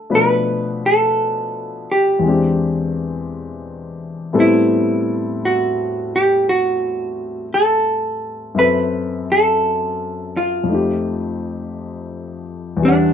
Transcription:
0.00 0.15 A4 medium
0.00 0.11 F#5 soft
0.10 2.22 B2 medium
0.10 2.22 F3 soft
0.10 2.22 A3 soft
0.10 2.23 D4 soft
0.10 2.23 B4 medium
0.15 0.86 B4 medium
0.86 1.93 A4 medium
1.92 3.97 G4 medium
2.19 4.32 E2 soft
2.19 4.33 E3 soft
2.19 4.34 G#3 soft
2.26 4.33 C4 soft
2.26 4.36 D4 soft
2.26 4.37 G4 soft
4.33 8.55 A2 medium
4.33 8.55 G3 soft
4.33 8.55 B3 soft
4.33 8.55 C4 medium
4.33 8.56 A4 medium
4.40 5.45 E4 medium
5.45 6.15 F#4 medium
6.16 6.47 G4 medium
6.49 7.48 F#4 medium
7.54 8.58 A4 medium
8.55 10.67 F#2 soft
8.55 10.68 F#3 soft
8.55 10.68 C4 soft
8.55 10.69 A4 soft
8.55 10.69 E5 soft
8.59 9.25 B4 medium
9.32 10.39 A4 medium
10.37 12.46 F4 medium
10.64 12.80 F2 soft
10.64 12.81 F3 soft
10.69 12.83 A3 soft
10.69 12.84 D#4 soft
10.74 12.85 G4 soft
12.77 13.13 E2 medium
12.77 13.13 E3 soft
12.82 13.13 G3 soft
12.82 13.13 D4 soft
12.82 13.13 D4 medium
12.88 13.13 F#5 medium

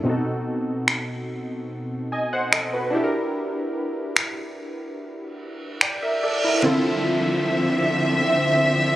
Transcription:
0.03 2.88 B2 medium
0.03 2.89 C4 medium
0.03 2.90 D#4 medium
0.08 2.08 F#4 medium
0.08 2.09 A4 medium
0.88 finger snap loud
2.12 2.31 D#5 medium
2.12 2.31 G#5 medium
2.33 2.52 C5 medium
2.33 2.52 F#5 medium
2.53 2.72 A4 medium
2.53 2.72 D#5 medium
2.53 finger snap loud
2.73 3.12 F#4 soft
2.73 3.12 B4 medium
2.90 6.17 D4 medium
2.90 5.77 E4 medium
2.95 5.78 G4 medium
2.95 3.02 A4 medium
3.03 5.82 A#4 medium
4.17 finger snap loud
4.99 reverse cymbal medium
5.81 6.01 D5 soft
5.81 6.01 G5 medium
5.81 finger snap loud
6.02 6.22 A#4 medium
6.02 6.22 E5 medium
6.23 6.42 A4 medium
6.23 6.42 D5 medium
6.44 6.63 E4 soft
6.44 6.82 A#4 medium
6.62 7.84 D3 medium
6.62 8.96 D3 medium
6.62 8.96 F3 medium
6.62 8.96 C4 medium
6.62 7.84 C4 medium
6.62 7.84 E4 medium
6.62 7.85 F4 medium
6.62 7.85 A4 medium
6.62 8.96 E5 medium
6.62 downlifter medium

